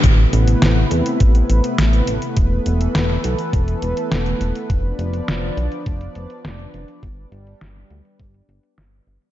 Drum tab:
HH |x-xxx-xxxxxxxxxx|x-xxx-xxxxxxxxxx|x-xxx-xxxxxxxxxx|x-xxx-xxxxxxxxxx|
SD |----o-------o---|----oo------o---|----o-------o---|----oo------o---|
BD |o-------o-------|o-------o-------|o-------o-------|o-------o-------|